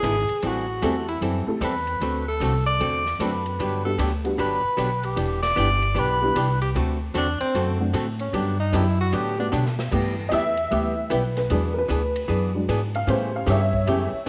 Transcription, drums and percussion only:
0.03 hi-hat pedal, ride
0.29 ride
0.42 ride
0.82 hi-hat pedal, ride
1.08 ride
1.22 ride
1.62 hi-hat pedal, ride
1.87 ride
2.01 ride
2.41 hi-hat pedal, ride
2.67 ride
2.81 ride
3.06 snare
3.20 hi-hat pedal, ride
3.46 ride
3.60 ride
3.99 hi-hat pedal, ride
4.25 ride
4.39 ride
4.78 hi-hat pedal, ride
5.03 ride
5.17 ride
5.43 snare, ride
5.57 hi-hat pedal, ride
5.82 ride
5.96 ride
6.36 hi-hat pedal, ride
6.61 ride
6.76 ride
7.15 hi-hat pedal, ride
7.40 ride
7.55 ride
7.94 hi-hat pedal, ride
8.19 ride
8.34 ride
8.73 hi-hat pedal, ride
9.13 ride
9.53 hi-hat pedal
9.66 snare
9.79 snare
9.92 kick, crash
10.32 hi-hat pedal, ride
10.57 ride
10.72 ride
11.11 hi-hat pedal, ride
11.37 snare, ride
11.50 ride
11.90 hi-hat pedal, ride
12.16 ride
12.69 hi-hat pedal, ride
12.95 ride
13.08 ride
13.48 hi-hat pedal, ride
13.73 kick
13.87 ride

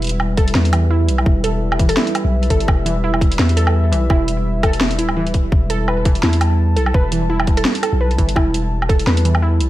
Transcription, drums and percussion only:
0.02 closed hi-hat
0.04 closed hi-hat
0.07 closed hi-hat
0.09 closed hi-hat
0.20 low woodblock
0.37 kick, closed hi-hat
0.48 open hi-hat
0.55 snare
0.65 open hi-hat
0.73 closed hi-hat, low woodblock
1.09 closed hi-hat
1.18 low woodblock
1.26 kick
1.44 closed hi-hat
1.72 low woodblock
1.79 kick, closed hi-hat
1.89 open hi-hat
1.97 snare
2.07 open hi-hat
2.15 closed hi-hat, low woodblock
2.43 open hi-hat
2.50 kick, closed hi-hat
2.60 open hi-hat
2.68 kick, low woodblock
2.86 closed hi-hat
3.14 low woodblock
3.21 kick, closed hi-hat
3.32 open hi-hat
3.39 snare
3.49 open hi-hat
3.57 closed hi-hat
3.67 low woodblock
3.93 closed hi-hat
4.10 kick, low woodblock
4.28 closed hi-hat
4.63 kick, closed hi-hat, low woodblock
4.73 open hi-hat
4.81 snare
4.91 open hi-hat
4.99 closed hi-hat
5.09 low woodblock
5.27 open hi-hat
5.34 kick, closed hi-hat
5.52 kick
5.70 closed hi-hat
5.88 low woodblock
6.05 kick, closed hi-hat
6.15 open hi-hat
6.23 snare
6.33 open hi-hat
6.41 closed hi-hat, low woodblock
6.77 closed hi-hat
6.86 low woodblock
6.94 kick
7.12 closed hi-hat
7.40 low woodblock
7.47 kick, closed hi-hat
7.57 open hi-hat
7.65 snare
7.75 open hi-hat
7.83 closed hi-hat, low woodblock
8.11 open hi-hat
8.18 kick, closed hi-hat
8.29 open hi-hat
8.36 kick, low woodblock
8.54 closed hi-hat
8.82 low woodblock
8.89 kick, closed hi-hat
8.99 open hi-hat
9.07 snare
9.17 open hi-hat
9.25 closed hi-hat
9.35 low woodblock
9.61 closed hi-hat

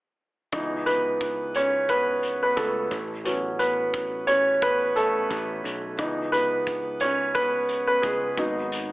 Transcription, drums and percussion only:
0.52 kick, closed hi-hat
0.86 closed hi-hat
1.21 kick, closed hi-hat
1.55 closed hi-hat
1.89 kick, closed hi-hat
2.23 closed hi-hat
2.57 kick, closed hi-hat
2.91 kick, closed hi-hat
3.25 closed hi-hat
3.59 closed hi-hat
3.94 kick, closed hi-hat
4.28 closed hi-hat
4.62 kick, closed hi-hat
4.96 closed hi-hat
5.31 kick, closed hi-hat
5.65 closed hi-hat
5.99 kick, closed hi-hat
6.33 closed hi-hat
6.67 kick, closed hi-hat
7.00 closed hi-hat
7.35 kick, closed hi-hat
7.69 closed hi-hat
8.03 kick, closed hi-hat
8.37 kick, closed hi-hat
8.72 closed hi-hat

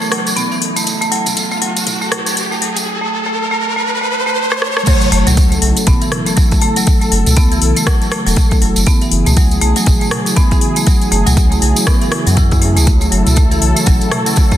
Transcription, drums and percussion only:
0.02 tambourine
0.12 cross-stick, open hi-hat
0.27 closed hi-hat, tambourine
0.37 closed hi-hat, mid tom, tambourine
0.52 tambourine
0.62 open hi-hat
0.76 closed hi-hat, tambourine
0.86 closed hi-hat, tambourine
1.02 closed hi-hat, tambourine
1.12 open hi-hat
1.26 closed hi-hat, mid tom, tambourine
1.37 closed hi-hat, tambourine
1.51 tambourine
1.62 open hi-hat
1.77 closed hi-hat, tambourine
1.87 closed hi-hat, mid tom, tambourine
2.02 tambourine
2.12 cross-stick, mid tom, open hi-hat
2.26 closed hi-hat, tambourine
2.37 closed hi-hat, tambourine
2.52 tambourine
2.62 open hi-hat
2.77 closed hi-hat, tambourine
4.52 cross-stick
4.62 cross-stick
4.77 cross-stick
4.86 kick, closed hi-hat, crash, tambourine
5.01 closed hi-hat, tambourine
5.12 open hi-hat
5.27 closed hi-hat, mid tom, tambourine
5.37 kick, closed hi-hat, tambourine
5.52 closed hi-hat, tambourine
5.62 open hi-hat
5.77 closed hi-hat, tambourine
5.87 kick, closed hi-hat, mid tom, tambourine
6.02 closed hi-hat, tambourine
6.12 cross-stick, mid tom, open hi-hat
6.26 closed hi-hat, tambourine
6.37 kick, closed hi-hat, tambourine
6.51 kick, closed hi-hat, tambourine
6.62 open hi-hat
6.76 closed hi-hat, tambourine
6.87 kick, closed hi-hat, tambourine
7.01 closed hi-hat, tambourine
7.12 open hi-hat
7.26 closed hi-hat, mid tom, tambourine
7.36 kick, closed hi-hat, tambourine
7.52 closed hi-hat, tambourine
7.62 open hi-hat
7.76 closed hi-hat, tambourine
7.87 kick, cross-stick, closed hi-hat, tambourine
8.02 closed hi-hat, tambourine
8.12 cross-stick, open hi-hat
8.27 open hi-hat, tambourine
8.36 kick, closed hi-hat, mid tom, tambourine
8.51 kick, closed hi-hat, tambourine
8.62 open hi-hat
8.76 closed hi-hat, tambourine
8.86 kick, closed hi-hat, tambourine
9.01 closed hi-hat, tambourine
9.11 open hi-hat
9.26 closed hi-hat, mid tom, tambourine
9.37 kick, closed hi-hat, tambourine
9.51 closed hi-hat, tambourine
9.61 open hi-hat
9.76 closed hi-hat, tambourine
9.86 kick, closed hi-hat, mid tom, tambourine
10.01 closed hi-hat, tambourine
10.11 cross-stick, mid tom, open hi-hat
10.26 closed hi-hat, tambourine
10.36 kick, closed hi-hat, tambourine
10.51 kick, closed hi-hat, tambourine
10.61 open hi-hat
10.76 closed hi-hat, tambourine
10.87 kick, closed hi-hat, tambourine
11.02 closed hi-hat, tambourine
11.12 open hi-hat
11.26 closed hi-hat, mid tom, tambourine
11.37 kick, closed hi-hat, tambourine
11.52 closed hi-hat, tambourine
11.62 open hi-hat
11.76 closed hi-hat, tambourine
11.87 kick, cross-stick, closed hi-hat, tambourine
12.01 closed hi-hat, tambourine
12.12 cross-stick, open hi-hat
12.27 open hi-hat, tambourine
12.37 kick, closed hi-hat, mid tom, tambourine
12.51 kick, closed hi-hat, tambourine
12.62 open hi-hat
12.77 closed hi-hat, tambourine
12.87 kick, closed hi-hat, tambourine
13.01 closed hi-hat, tambourine
13.12 open hi-hat
13.27 closed hi-hat, mid tom, tambourine
13.36 kick, closed hi-hat, tambourine
13.51 closed hi-hat, tambourine
13.62 open hi-hat
13.76 closed hi-hat, tambourine
13.86 kick, closed hi-hat, mid tom, tambourine
14.01 closed hi-hat, tambourine
14.12 cross-stick, mid tom, open hi-hat
14.26 closed hi-hat, tambourine
14.36 kick, closed hi-hat, tambourine
14.51 kick, closed hi-hat, tambourine

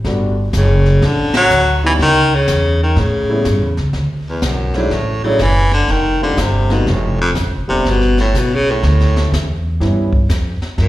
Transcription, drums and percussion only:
0.05 brush sweep, kick, snare
0.53 kick, snare, hi-hat pedal
0.85 snare
1.02 brush sweep, kick, snare
1.34 snare, ride
1.50 hi-hat pedal
1.99 brush sweep, kick, snare
2.47 kick, snare, hi-hat pedal
2.96 brush sweep, kick, snare
3.45 kick, snare, hi-hat pedal
3.77 snare
3.93 brush sweep, kick, snare
4.42 kick, snare, hi-hat pedal
4.74 snare
4.91 brush sweep, kick, snare
5.39 kick, snare, hi-hat pedal
5.71 snare
5.88 brush sweep, kick, snare
6.37 kick, snare, hi-hat pedal
6.70 snare
6.87 brush sweep, kick, snare
7.35 kick, snare, hi-hat pedal
7.85 brush sweep, kick, snare
8.01 snare
8.18 snare
8.34 kick, snare, hi-hat pedal
8.83 brush sweep, kick, snare
9.00 snare
9.16 snare
9.32 kick, snare, hi-hat pedal
9.80 brush sweep, kick, snare
10.13 kick
10.29 kick, snare, hi-hat pedal
10.62 snare
10.78 brush sweep, kick, snare

